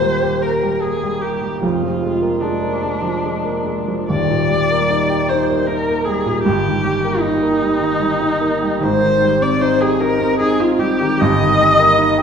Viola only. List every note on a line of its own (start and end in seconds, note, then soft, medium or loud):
0.00 0.44 C5 medium
0.43 0.83 A#4 medium
0.82 1.23 G#4 medium
1.21 1.60 G4 medium
1.61 2.43 F4 medium
2.41 4.08 D4 medium
4.09 5.30 D5 loud
5.28 5.68 C5 medium
5.66 6.06 A#4 medium
6.05 6.42 G#4 medium
6.43 7.22 G4 medium
7.21 8.84 D#4 medium
8.83 9.44 C5 loud
9.42 9.63 D5 medium
9.62 9.82 C5 loud
9.81 10.02 G#4 medium
10.00 10.39 A#4 medium
10.39 10.62 G#4 loud
10.60 10.81 F4 medium
10.80 11.22 G4 medium
11.20 12.22 D#5 loud